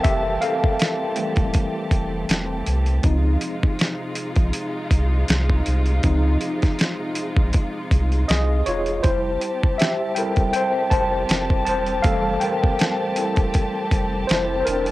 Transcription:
0.00 1.14 E3 medium
0.00 3.01 E3 medium
0.00 1.17 G3 medium
0.00 1.17 A3 soft
0.00 1.13 C4 medium
0.00 3.01 C4 medium
0.00 0.06 G4 medium
0.00 3.01 G4 medium
0.00 0.43 A4 medium
0.00 3.06 A#4 medium
0.00 0.04 E5 loud
0.00 0.21 E5 loud
0.00 0.41 F5 loud
0.00 3.06 G5 loud
0.00 3.01 A5 medium
0.04 0.37 F1 loud
0.04 0.22 G4 medium
0.04 kick loud
0.04 closed hi-hat medium
0.41 2.64 A4 medium
0.41 2.63 F5 medium
0.41 closed hi-hat medium
0.64 kick loud
0.79 snare loud
0.79 closed hi-hat medium
1.16 2.26 E3 medium
1.16 2.25 G3 medium
1.16 2.26 A3 medium
1.16 closed hi-hat medium
1.36 1.52 D1 medium
1.36 kick medium
1.36 closed hi-hat soft
1.54 kick medium
1.54 closed hi-hat medium
1.91 2.24 E1 loud
1.91 kick medium
1.91 closed hi-hat medium
2.29 2.62 E1 loud
2.29 snare loud
2.29 closed hi-hat medium
2.66 3.00 C2 medium
2.66 closed hi-hat medium
2.86 closed hi-hat soft
3.03 3.37 C#2 loud
3.03 9.00 C3 medium
3.03 4.13 F3 medium
3.03 9.00 G#3 medium
3.03 4.13 C4 medium
3.03 9.00 D#4 medium
3.03 4.14 D#4 medium
3.03 9.00 F4 medium
3.03 kick loud
3.03 closed hi-hat medium
3.41 closed hi-hat medium
3.63 kick medium
3.79 snare loud
3.79 closed hi-hat medium
4.15 closed hi-hat medium
4.36 4.52 A#1 medium
4.36 kick loud
4.36 closed hi-hat soft
4.53 closed hi-hat medium
4.91 5.24 C2 loud
4.91 kick medium
4.91 closed hi-hat medium
5.28 5.62 C2 loud
5.28 snare loud
5.28 closed hi-hat medium
5.50 kick medium
5.66 6.00 C2 medium
5.66 closed hi-hat medium
5.86 closed hi-hat soft
6.03 6.37 C#2 loud
6.03 6.55 F3 medium
6.03 6.56 C4 medium
6.03 6.56 D#4 medium
6.03 kick loud
6.03 closed hi-hat medium
6.41 closed hi-hat medium
6.62 kick loud
6.62 snare soft
6.62 closed hi-hat soft
6.79 snare loud
6.79 closed hi-hat medium
7.15 closed hi-hat medium
7.37 7.52 A#1 loud
7.37 kick loud
7.53 kick loud
7.53 closed hi-hat medium
7.91 8.24 C2 medium
7.91 kick medium
7.91 closed hi-hat medium
8.12 closed hi-hat soft
8.28 8.62 C2 medium
8.28 8.65 G#4 medium
8.28 8.67 D#5 medium
8.28 snare loud
8.28 closed hi-hat medium
8.66 9.00 E1 loud
8.66 8.85 F4 medium
8.66 8.83 C#5 loud
8.66 closed hi-hat medium
8.86 closed hi-hat soft
9.03 9.37 F1 loud
9.03 14.91 G3 medium
9.03 14.91 C4 medium
9.03 9.76 E4 medium
9.03 14.91 G4 medium
9.03 9.81 C5 loud
9.03 14.91 A5 medium
9.03 kick loud
9.03 closed hi-hat medium
9.41 closed hi-hat medium
9.63 kick medium
9.78 10.15 G4 medium
9.78 10.14 E5 loud
9.78 snare loud
9.78 closed hi-hat medium
10.15 11.25 G3 medium
10.15 11.26 E4 medium
10.15 11.26 A4 soft
10.15 10.52 A#4 medium
10.15 10.51 G5 loud
10.15 closed hi-hat medium
10.36 10.52 E1 medium
10.36 kick medium
10.36 closed hi-hat soft
10.53 10.90 C5 medium
10.53 10.92 G5 loud
10.53 closed hi-hat medium
10.90 11.24 F1 loud
10.90 11.64 C5 medium
10.90 11.64 A5 loud
10.90 kick medium
10.90 closed hi-hat medium
11.29 11.62 F1 medium
11.29 snare loud
11.29 closed hi-hat medium
11.50 kick medium
11.65 12.00 E1 loud
11.65 12.03 C5 medium
11.65 12.05 A5 loud
11.65 closed hi-hat medium
11.86 closed hi-hat soft
12.02 12.37 F1 loud
12.02 12.57 E3 medium
12.02 12.56 G3 medium
12.02 12.56 A3 medium
12.02 12.40 A4 medium
12.02 12.42 F5 loud
12.02 kick loud
12.02 closed hi-hat medium
12.40 14.26 A#4 medium
12.40 14.34 G5 loud
12.40 closed hi-hat medium
12.64 kick loud
12.79 snare loud
12.79 closed hi-hat medium
13.16 13.51 G3 soft
13.16 13.51 E4 medium
13.16 13.51 A4 soft
13.16 closed hi-hat medium
13.36 13.52 E1 loud
13.36 kick medium
13.36 closed hi-hat soft
13.54 kick medium
13.54 closed hi-hat medium
13.91 14.24 F1 loud
13.91 kick medium
13.91 closed hi-hat medium
14.27 14.63 F1 medium
14.27 14.59 E4 medium
14.27 14.59 C5 medium
14.27 snare loud
14.27 closed hi-hat medium
14.60 14.67 C5 medium
14.65 14.91 E1 loud
14.65 14.91 D4 medium
14.65 14.91 A#4 medium
14.65 closed hi-hat medium
14.86 closed hi-hat soft

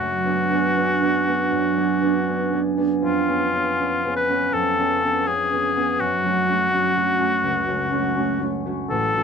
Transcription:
0.00 1.51 F#2 soft
0.00 2.60 F#4 medium
0.00 3.06 F#4 soft
0.24 0.50 B3 soft
0.24 0.50 D4 soft
0.24 0.51 G#4 soft
0.51 0.75 B3 soft
0.51 0.76 D4 soft
0.51 0.76 G#4 soft
0.77 1.01 B3 soft
0.77 1.01 D4 soft
0.77 1.02 G#4 soft
1.02 1.26 B3 soft
1.02 1.26 D4 soft
1.02 1.27 G#4 soft
1.27 1.76 B3 soft
1.27 1.76 D4 soft
1.27 1.77 G#4 soft
1.52 3.06 F#2 soft
1.76 2.00 B3 soft
1.76 2.01 D4 soft
1.76 2.02 G#4 soft
2.02 2.26 B3 soft
2.02 2.27 D4 soft
2.02 2.27 G#4 soft
2.28 2.52 B3 soft
2.28 2.52 D4 soft
2.28 2.52 G#4 soft
2.53 2.76 B3 soft
2.53 2.77 D4 soft
2.53 2.78 G#4 soft
2.77 3.27 B3 soft
2.77 3.06 D4 soft
2.77 3.28 G#4 soft
3.02 4.52 F2 soft
3.02 4.12 F4 medium
3.28 3.52 B3 soft
3.28 3.53 C#4 soft
3.28 3.53 G#4 soft
3.53 3.77 B3 soft
3.53 3.78 C#4 soft
3.53 3.78 G#4 soft
3.79 4.04 B3 soft
3.79 4.04 C#4 soft
3.79 4.04 G#4 soft
4.05 4.28 B3 soft
4.05 4.29 C#4 soft
4.05 4.29 G#4 soft
4.16 4.55 B4 medium
4.29 4.77 B3 soft
4.29 4.77 C#4 soft
4.29 4.78 G#4 soft
4.53 6.02 F2 soft
4.53 5.28 A4 medium
4.78 5.02 B3 soft
4.78 5.02 C#4 soft
4.78 5.03 G#4 soft
5.03 5.27 B3 soft
5.03 5.27 C#4 soft
5.03 5.28 G#4 soft
5.27 5.51 B3 soft
5.27 5.52 C#4 soft
5.27 6.02 G#4 medium
5.27 5.52 G#4 soft
5.52 5.75 B3 soft
5.52 5.76 C#4 soft
5.52 5.76 G#4 soft
5.76 6.03 B3 soft
5.76 6.24 C#4 soft
5.76 6.03 G#4 soft
6.00 8.93 F#2 soft
6.00 8.53 F#4 medium
6.25 6.48 A3 soft
6.25 6.48 C#4 soft
6.25 6.49 F#4 soft
6.49 6.70 A3 soft
6.49 6.72 C#4 soft
6.49 6.72 F#4 soft
6.71 6.95 A3 soft
6.71 6.96 C#4 soft
6.75 6.96 F#4 soft
6.96 7.18 A3 soft
6.96 7.18 C#4 soft
6.96 7.19 F#4 soft
7.19 7.66 A3 soft
7.19 7.67 C#4 soft
7.19 7.67 F#4 soft
7.43 8.92 C#2 soft
7.67 7.90 A3 soft
7.67 7.90 C#4 soft
7.67 7.91 F#4 soft
7.91 8.15 A3 soft
7.91 8.15 C#4 soft
7.91 8.16 F#4 soft
8.16 8.39 A3 soft
8.16 8.40 C#4 soft
8.16 8.41 F#4 soft
8.40 8.64 A3 soft
8.40 8.65 C#4 soft
8.40 8.65 F#4 soft
8.66 9.14 A3 soft
8.66 9.14 C#4 soft
8.66 9.15 F#4 soft
8.90 9.23 A1 soft
8.90 9.23 A4 medium
9.15 9.23 A3 soft
9.15 9.23 C#4 soft
9.15 9.23 F#4 soft

